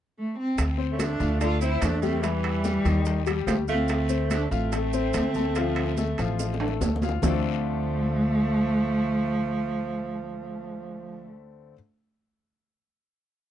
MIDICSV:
0, 0, Header, 1, 6, 480
1, 0, Start_track
1, 0, Key_signature, -1, "minor"
1, 0, Tempo, 415225
1, 681, Time_signature, 4, 2, 24, 8
1, 15612, End_track
2, 0, Start_track
2, 0, Title_t, "Grand piano"
2, 0, Program_c, 0, 0
2, 898, Note_on_c, 0, 60, 67
2, 905, Note_on_c, 0, 72, 66
2, 1297, Note_off_c, 0, 60, 0
2, 1301, Note_off_c, 0, 72, 0
2, 1386, Note_on_c, 0, 65, 65
2, 1386, Note_on_c, 0, 77, 73
2, 1585, Note_off_c, 0, 65, 0
2, 1585, Note_off_c, 0, 77, 0
2, 1627, Note_on_c, 0, 57, 66
2, 1631, Note_on_c, 0, 69, 67
2, 1825, Note_off_c, 0, 57, 0
2, 1828, Note_off_c, 0, 69, 0
2, 1868, Note_on_c, 0, 60, 64
2, 1873, Note_on_c, 0, 72, 72
2, 2261, Note_off_c, 0, 60, 0
2, 2264, Note_off_c, 0, 72, 0
2, 2344, Note_on_c, 0, 55, 71
2, 2345, Note_on_c, 0, 67, 68
2, 2542, Note_off_c, 0, 55, 0
2, 2543, Note_off_c, 0, 67, 0
2, 2573, Note_on_c, 0, 52, 74
2, 2577, Note_on_c, 0, 64, 77
2, 2972, Note_off_c, 0, 52, 0
2, 2974, Note_off_c, 0, 64, 0
2, 3054, Note_on_c, 0, 67, 64
2, 3057, Note_on_c, 0, 55, 65
2, 3256, Note_off_c, 0, 67, 0
2, 3257, Note_off_c, 0, 55, 0
2, 3298, Note_on_c, 0, 51, 77
2, 3306, Note_on_c, 0, 63, 81
2, 3694, Note_off_c, 0, 51, 0
2, 3699, Note_off_c, 0, 63, 0
2, 3774, Note_on_c, 0, 55, 71
2, 3776, Note_on_c, 0, 67, 71
2, 4172, Note_off_c, 0, 55, 0
2, 4174, Note_off_c, 0, 67, 0
2, 4254, Note_on_c, 0, 65, 70
2, 4257, Note_on_c, 0, 77, 73
2, 4653, Note_off_c, 0, 65, 0
2, 4655, Note_off_c, 0, 77, 0
2, 4732, Note_on_c, 0, 60, 68
2, 4737, Note_on_c, 0, 72, 69
2, 5132, Note_off_c, 0, 60, 0
2, 5135, Note_off_c, 0, 72, 0
2, 5217, Note_on_c, 0, 65, 67
2, 5222, Note_on_c, 0, 77, 73
2, 5419, Note_off_c, 0, 65, 0
2, 5421, Note_off_c, 0, 77, 0
2, 5463, Note_on_c, 0, 57, 66
2, 5469, Note_on_c, 0, 69, 68
2, 5662, Note_off_c, 0, 57, 0
2, 5666, Note_off_c, 0, 69, 0
2, 5705, Note_on_c, 0, 60, 70
2, 5710, Note_on_c, 0, 72, 71
2, 6102, Note_off_c, 0, 60, 0
2, 6105, Note_off_c, 0, 72, 0
2, 6194, Note_on_c, 0, 57, 68
2, 6197, Note_on_c, 0, 69, 69
2, 6390, Note_off_c, 0, 57, 0
2, 6392, Note_off_c, 0, 69, 0
2, 6438, Note_on_c, 0, 53, 76
2, 6443, Note_on_c, 0, 65, 75
2, 6831, Note_off_c, 0, 53, 0
2, 6834, Note_off_c, 0, 65, 0
2, 6916, Note_on_c, 0, 57, 66
2, 6919, Note_on_c, 0, 69, 62
2, 7114, Note_off_c, 0, 57, 0
2, 7115, Note_off_c, 0, 69, 0
2, 7153, Note_on_c, 0, 53, 81
2, 7164, Note_on_c, 0, 65, 77
2, 7550, Note_off_c, 0, 53, 0
2, 7556, Note_off_c, 0, 65, 0
2, 7640, Note_on_c, 0, 57, 63
2, 7641, Note_on_c, 0, 69, 65
2, 8035, Note_off_c, 0, 57, 0
2, 8036, Note_off_c, 0, 69, 0
2, 8128, Note_on_c, 0, 65, 68
2, 8136, Note_on_c, 0, 77, 67
2, 8323, Note_off_c, 0, 65, 0
2, 8328, Note_off_c, 0, 77, 0
2, 8359, Note_on_c, 0, 57, 80
2, 8360, Note_on_c, 0, 50, 89
2, 8361, Note_on_c, 0, 60, 80
2, 8361, Note_on_c, 0, 62, 79
2, 8368, Note_on_c, 0, 65, 80
2, 8369, Note_on_c, 0, 69, 91
2, 13560, Note_off_c, 0, 57, 0
2, 13561, Note_off_c, 0, 50, 0
2, 13562, Note_off_c, 0, 60, 0
2, 13562, Note_off_c, 0, 62, 0
2, 13568, Note_off_c, 0, 65, 0
2, 13570, Note_off_c, 0, 69, 0
2, 15612, End_track
3, 0, Start_track
3, 0, Title_t, "Cello"
3, 0, Program_c, 1, 42
3, 215, Note_on_c, 1, 57, 87
3, 431, Note_off_c, 1, 57, 0
3, 443, Note_on_c, 1, 60, 96
3, 886, Note_off_c, 1, 60, 0
3, 1066, Note_on_c, 1, 61, 66
3, 1167, Note_on_c, 1, 62, 89
3, 1185, Note_off_c, 1, 61, 0
3, 1639, Note_off_c, 1, 62, 0
3, 1644, Note_on_c, 1, 65, 95
3, 1861, Note_off_c, 1, 65, 0
3, 1881, Note_on_c, 1, 64, 94
3, 2113, Note_on_c, 1, 62, 95
3, 2130, Note_off_c, 1, 64, 0
3, 2351, Note_off_c, 1, 62, 0
3, 2358, Note_on_c, 1, 60, 92
3, 2595, Note_on_c, 1, 55, 105
3, 2612, Note_off_c, 1, 60, 0
3, 4021, Note_off_c, 1, 55, 0
3, 4028, Note_on_c, 1, 57, 82
3, 4135, Note_off_c, 1, 57, 0
3, 4272, Note_on_c, 1, 60, 99
3, 4943, Note_off_c, 1, 60, 0
3, 4984, Note_on_c, 1, 62, 85
3, 5209, Note_off_c, 1, 62, 0
3, 5227, Note_on_c, 1, 60, 92
3, 7834, Note_off_c, 1, 60, 0
3, 8374, Note_on_c, 1, 57, 96
3, 13095, Note_off_c, 1, 57, 0
3, 15612, End_track
4, 0, Start_track
4, 0, Title_t, "Tenor saxophone"
4, 0, Program_c, 2, 66
4, 1060, Note_on_c, 2, 57, 61
4, 1147, Note_off_c, 2, 57, 0
4, 1147, Note_on_c, 2, 57, 79
4, 1624, Note_off_c, 2, 57, 0
4, 1631, Note_on_c, 2, 62, 86
4, 1854, Note_off_c, 2, 62, 0
4, 1863, Note_on_c, 2, 60, 78
4, 2103, Note_on_c, 2, 57, 79
4, 2120, Note_off_c, 2, 60, 0
4, 2323, Note_off_c, 2, 57, 0
4, 2329, Note_on_c, 2, 57, 77
4, 2570, Note_on_c, 2, 52, 80
4, 2588, Note_off_c, 2, 57, 0
4, 3537, Note_off_c, 2, 52, 0
4, 4011, Note_on_c, 2, 53, 68
4, 4122, Note_off_c, 2, 53, 0
4, 4263, Note_on_c, 2, 57, 82
4, 4939, Note_off_c, 2, 57, 0
4, 4981, Note_on_c, 2, 57, 76
4, 5207, Note_off_c, 2, 57, 0
4, 5217, Note_on_c, 2, 57, 77
4, 7829, Note_off_c, 2, 57, 0
4, 8357, Note_on_c, 2, 53, 77
4, 13086, Note_off_c, 2, 53, 0
4, 15612, End_track
5, 0, Start_track
5, 0, Title_t, "Upright bass"
5, 0, Program_c, 3, 32
5, 672, Note_on_c, 3, 38, 82
5, 1345, Note_off_c, 3, 38, 0
5, 1389, Note_on_c, 3, 38, 92
5, 2062, Note_off_c, 3, 38, 0
5, 2104, Note_on_c, 3, 40, 83
5, 3232, Note_off_c, 3, 40, 0
5, 3293, Note_on_c, 3, 39, 91
5, 3972, Note_off_c, 3, 39, 0
5, 4008, Note_on_c, 3, 38, 84
5, 5148, Note_off_c, 3, 38, 0
5, 5217, Note_on_c, 3, 33, 90
5, 5898, Note_off_c, 3, 33, 0
5, 5953, Note_on_c, 3, 38, 84
5, 7087, Note_off_c, 3, 38, 0
5, 7157, Note_on_c, 3, 33, 93
5, 7834, Note_off_c, 3, 33, 0
5, 7872, Note_on_c, 3, 38, 84
5, 8302, Note_off_c, 3, 38, 0
5, 8357, Note_on_c, 3, 38, 82
5, 13558, Note_off_c, 3, 38, 0
5, 15612, End_track
6, 0, Start_track
6, 0, Title_t, "Drums"
6, 672, Note_on_c, 9, 70, 62
6, 674, Note_on_c, 9, 60, 71
6, 674, Note_on_c, 9, 65, 90
6, 677, Note_on_c, 9, 63, 33
6, 683, Note_on_c, 9, 74, 69
6, 788, Note_off_c, 9, 70, 0
6, 790, Note_off_c, 9, 60, 0
6, 790, Note_off_c, 9, 65, 0
6, 793, Note_off_c, 9, 63, 0
6, 798, Note_off_c, 9, 74, 0
6, 916, Note_on_c, 9, 63, 33
6, 1031, Note_off_c, 9, 63, 0
6, 1147, Note_on_c, 9, 60, 53
6, 1151, Note_on_c, 9, 70, 66
6, 1152, Note_on_c, 9, 63, 89
6, 1152, Note_on_c, 9, 65, 86
6, 1156, Note_on_c, 9, 73, 64
6, 1262, Note_off_c, 9, 60, 0
6, 1267, Note_off_c, 9, 70, 0
6, 1268, Note_off_c, 9, 63, 0
6, 1268, Note_off_c, 9, 65, 0
6, 1272, Note_off_c, 9, 73, 0
6, 1388, Note_on_c, 9, 70, 29
6, 1388, Note_on_c, 9, 73, 66
6, 1396, Note_on_c, 9, 63, 33
6, 1503, Note_off_c, 9, 70, 0
6, 1503, Note_off_c, 9, 73, 0
6, 1511, Note_off_c, 9, 63, 0
6, 1627, Note_on_c, 9, 70, 68
6, 1628, Note_on_c, 9, 74, 66
6, 1630, Note_on_c, 9, 60, 65
6, 1630, Note_on_c, 9, 65, 67
6, 1637, Note_on_c, 9, 63, 32
6, 1743, Note_off_c, 9, 70, 0
6, 1744, Note_off_c, 9, 74, 0
6, 1746, Note_off_c, 9, 60, 0
6, 1746, Note_off_c, 9, 65, 0
6, 1753, Note_off_c, 9, 63, 0
6, 1863, Note_on_c, 9, 70, 57
6, 1874, Note_on_c, 9, 63, 32
6, 1978, Note_off_c, 9, 70, 0
6, 1989, Note_off_c, 9, 63, 0
6, 2099, Note_on_c, 9, 65, 87
6, 2102, Note_on_c, 9, 70, 67
6, 2106, Note_on_c, 9, 60, 67
6, 2106, Note_on_c, 9, 61, 81
6, 2108, Note_on_c, 9, 63, 83
6, 2113, Note_on_c, 9, 73, 63
6, 2215, Note_off_c, 9, 65, 0
6, 2218, Note_off_c, 9, 70, 0
6, 2222, Note_off_c, 9, 60, 0
6, 2222, Note_off_c, 9, 61, 0
6, 2224, Note_off_c, 9, 63, 0
6, 2229, Note_off_c, 9, 73, 0
6, 2340, Note_on_c, 9, 70, 27
6, 2350, Note_on_c, 9, 63, 75
6, 2351, Note_on_c, 9, 73, 65
6, 2455, Note_off_c, 9, 70, 0
6, 2465, Note_off_c, 9, 63, 0
6, 2467, Note_off_c, 9, 73, 0
6, 2582, Note_on_c, 9, 70, 65
6, 2584, Note_on_c, 9, 65, 69
6, 2585, Note_on_c, 9, 74, 67
6, 2588, Note_on_c, 9, 60, 69
6, 2591, Note_on_c, 9, 63, 32
6, 2697, Note_off_c, 9, 70, 0
6, 2699, Note_off_c, 9, 65, 0
6, 2701, Note_off_c, 9, 74, 0
6, 2703, Note_off_c, 9, 60, 0
6, 2706, Note_off_c, 9, 63, 0
6, 2821, Note_on_c, 9, 65, 88
6, 2825, Note_on_c, 9, 60, 31
6, 2833, Note_on_c, 9, 63, 34
6, 2936, Note_off_c, 9, 65, 0
6, 2941, Note_off_c, 9, 60, 0
6, 2949, Note_off_c, 9, 63, 0
6, 3054, Note_on_c, 9, 70, 69
6, 3060, Note_on_c, 9, 73, 66
6, 3062, Note_on_c, 9, 60, 54
6, 3068, Note_on_c, 9, 63, 88
6, 3170, Note_off_c, 9, 70, 0
6, 3175, Note_off_c, 9, 73, 0
6, 3178, Note_off_c, 9, 60, 0
6, 3184, Note_off_c, 9, 63, 0
6, 3299, Note_on_c, 9, 70, 29
6, 3299, Note_on_c, 9, 73, 67
6, 3302, Note_on_c, 9, 65, 65
6, 3415, Note_off_c, 9, 70, 0
6, 3415, Note_off_c, 9, 73, 0
6, 3418, Note_off_c, 9, 65, 0
6, 3528, Note_on_c, 9, 70, 70
6, 3542, Note_on_c, 9, 74, 70
6, 3546, Note_on_c, 9, 60, 63
6, 3547, Note_on_c, 9, 63, 32
6, 3644, Note_off_c, 9, 70, 0
6, 3658, Note_off_c, 9, 74, 0
6, 3662, Note_off_c, 9, 60, 0
6, 3663, Note_off_c, 9, 63, 0
6, 3772, Note_on_c, 9, 70, 58
6, 3784, Note_on_c, 9, 63, 33
6, 3784, Note_on_c, 9, 65, 89
6, 3789, Note_on_c, 9, 60, 32
6, 3887, Note_off_c, 9, 70, 0
6, 3899, Note_off_c, 9, 63, 0
6, 3900, Note_off_c, 9, 65, 0
6, 3905, Note_off_c, 9, 60, 0
6, 4020, Note_on_c, 9, 70, 71
6, 4023, Note_on_c, 9, 65, 65
6, 4025, Note_on_c, 9, 60, 67
6, 4025, Note_on_c, 9, 61, 81
6, 4026, Note_on_c, 9, 63, 82
6, 4026, Note_on_c, 9, 73, 70
6, 4135, Note_off_c, 9, 70, 0
6, 4139, Note_off_c, 9, 65, 0
6, 4140, Note_off_c, 9, 60, 0
6, 4140, Note_off_c, 9, 61, 0
6, 4142, Note_off_c, 9, 63, 0
6, 4142, Note_off_c, 9, 73, 0
6, 4252, Note_on_c, 9, 70, 26
6, 4261, Note_on_c, 9, 73, 65
6, 4266, Note_on_c, 9, 63, 76
6, 4268, Note_on_c, 9, 60, 33
6, 4368, Note_off_c, 9, 70, 0
6, 4376, Note_off_c, 9, 73, 0
6, 4382, Note_off_c, 9, 63, 0
6, 4383, Note_off_c, 9, 60, 0
6, 4488, Note_on_c, 9, 70, 61
6, 4503, Note_on_c, 9, 65, 87
6, 4506, Note_on_c, 9, 63, 32
6, 4506, Note_on_c, 9, 74, 70
6, 4509, Note_on_c, 9, 60, 69
6, 4603, Note_off_c, 9, 70, 0
6, 4618, Note_off_c, 9, 65, 0
6, 4621, Note_off_c, 9, 63, 0
6, 4621, Note_off_c, 9, 74, 0
6, 4624, Note_off_c, 9, 60, 0
6, 4728, Note_on_c, 9, 70, 60
6, 4743, Note_on_c, 9, 63, 34
6, 4844, Note_off_c, 9, 70, 0
6, 4858, Note_off_c, 9, 63, 0
6, 4976, Note_on_c, 9, 70, 69
6, 4979, Note_on_c, 9, 63, 86
6, 4981, Note_on_c, 9, 65, 84
6, 4984, Note_on_c, 9, 73, 65
6, 4992, Note_on_c, 9, 60, 54
6, 5091, Note_off_c, 9, 70, 0
6, 5094, Note_off_c, 9, 63, 0
6, 5096, Note_off_c, 9, 65, 0
6, 5100, Note_off_c, 9, 73, 0
6, 5107, Note_off_c, 9, 60, 0
6, 5223, Note_on_c, 9, 70, 28
6, 5226, Note_on_c, 9, 63, 33
6, 5226, Note_on_c, 9, 73, 68
6, 5339, Note_off_c, 9, 70, 0
6, 5341, Note_off_c, 9, 73, 0
6, 5342, Note_off_c, 9, 63, 0
6, 5458, Note_on_c, 9, 70, 70
6, 5462, Note_on_c, 9, 65, 68
6, 5464, Note_on_c, 9, 63, 34
6, 5466, Note_on_c, 9, 60, 66
6, 5470, Note_on_c, 9, 74, 65
6, 5574, Note_off_c, 9, 70, 0
6, 5577, Note_off_c, 9, 65, 0
6, 5580, Note_off_c, 9, 63, 0
6, 5581, Note_off_c, 9, 60, 0
6, 5586, Note_off_c, 9, 74, 0
6, 5700, Note_on_c, 9, 70, 57
6, 5702, Note_on_c, 9, 63, 31
6, 5816, Note_off_c, 9, 70, 0
6, 5817, Note_off_c, 9, 63, 0
6, 5935, Note_on_c, 9, 70, 71
6, 5943, Note_on_c, 9, 65, 81
6, 5944, Note_on_c, 9, 60, 69
6, 5944, Note_on_c, 9, 61, 78
6, 5947, Note_on_c, 9, 63, 82
6, 5950, Note_on_c, 9, 73, 70
6, 6050, Note_off_c, 9, 70, 0
6, 6059, Note_off_c, 9, 65, 0
6, 6060, Note_off_c, 9, 60, 0
6, 6060, Note_off_c, 9, 61, 0
6, 6062, Note_off_c, 9, 63, 0
6, 6066, Note_off_c, 9, 73, 0
6, 6176, Note_on_c, 9, 70, 28
6, 6185, Note_on_c, 9, 63, 80
6, 6194, Note_on_c, 9, 73, 65
6, 6292, Note_off_c, 9, 70, 0
6, 6301, Note_off_c, 9, 63, 0
6, 6309, Note_off_c, 9, 73, 0
6, 6417, Note_on_c, 9, 70, 64
6, 6424, Note_on_c, 9, 65, 69
6, 6431, Note_on_c, 9, 60, 70
6, 6431, Note_on_c, 9, 63, 33
6, 6435, Note_on_c, 9, 74, 73
6, 6533, Note_off_c, 9, 70, 0
6, 6539, Note_off_c, 9, 65, 0
6, 6546, Note_off_c, 9, 63, 0
6, 6547, Note_off_c, 9, 60, 0
6, 6550, Note_off_c, 9, 74, 0
6, 6660, Note_on_c, 9, 65, 91
6, 6669, Note_on_c, 9, 60, 32
6, 6669, Note_on_c, 9, 63, 34
6, 6775, Note_off_c, 9, 65, 0
6, 6785, Note_off_c, 9, 60, 0
6, 6785, Note_off_c, 9, 63, 0
6, 6904, Note_on_c, 9, 70, 73
6, 6907, Note_on_c, 9, 63, 85
6, 6912, Note_on_c, 9, 60, 57
6, 6917, Note_on_c, 9, 73, 65
6, 7020, Note_off_c, 9, 70, 0
6, 7023, Note_off_c, 9, 63, 0
6, 7027, Note_off_c, 9, 60, 0
6, 7033, Note_off_c, 9, 73, 0
6, 7144, Note_on_c, 9, 65, 63
6, 7151, Note_on_c, 9, 70, 27
6, 7152, Note_on_c, 9, 73, 67
6, 7259, Note_off_c, 9, 65, 0
6, 7266, Note_off_c, 9, 70, 0
6, 7267, Note_off_c, 9, 73, 0
6, 7389, Note_on_c, 9, 70, 73
6, 7389, Note_on_c, 9, 74, 70
6, 7390, Note_on_c, 9, 63, 34
6, 7394, Note_on_c, 9, 60, 64
6, 7505, Note_off_c, 9, 63, 0
6, 7505, Note_off_c, 9, 70, 0
6, 7505, Note_off_c, 9, 74, 0
6, 7510, Note_off_c, 9, 60, 0
6, 7559, Note_on_c, 9, 60, 67
6, 7630, Note_on_c, 9, 65, 85
6, 7637, Note_on_c, 9, 63, 35
6, 7674, Note_off_c, 9, 60, 0
6, 7720, Note_on_c, 9, 61, 74
6, 7745, Note_off_c, 9, 65, 0
6, 7752, Note_off_c, 9, 63, 0
6, 7836, Note_off_c, 9, 61, 0
6, 7871, Note_on_c, 9, 63, 80
6, 7875, Note_on_c, 9, 66, 68
6, 7878, Note_on_c, 9, 61, 95
6, 7878, Note_on_c, 9, 73, 68
6, 7879, Note_on_c, 9, 70, 72
6, 7986, Note_off_c, 9, 63, 0
6, 7990, Note_off_c, 9, 66, 0
6, 7994, Note_off_c, 9, 61, 0
6, 7994, Note_off_c, 9, 70, 0
6, 7994, Note_off_c, 9, 73, 0
6, 8043, Note_on_c, 9, 61, 74
6, 8111, Note_on_c, 9, 63, 78
6, 8116, Note_on_c, 9, 66, 71
6, 8119, Note_on_c, 9, 73, 66
6, 8120, Note_on_c, 9, 70, 26
6, 8159, Note_off_c, 9, 61, 0
6, 8196, Note_on_c, 9, 61, 84
6, 8227, Note_off_c, 9, 63, 0
6, 8232, Note_off_c, 9, 66, 0
6, 8235, Note_off_c, 9, 73, 0
6, 8236, Note_off_c, 9, 70, 0
6, 8311, Note_off_c, 9, 61, 0
6, 8348, Note_on_c, 9, 64, 91
6, 8355, Note_on_c, 9, 61, 97
6, 8358, Note_on_c, 9, 70, 88
6, 8360, Note_on_c, 9, 66, 94
6, 8360, Note_on_c, 9, 74, 96
6, 8463, Note_off_c, 9, 64, 0
6, 8471, Note_off_c, 9, 61, 0
6, 8473, Note_off_c, 9, 70, 0
6, 8475, Note_off_c, 9, 74, 0
6, 8476, Note_off_c, 9, 66, 0
6, 15612, End_track
0, 0, End_of_file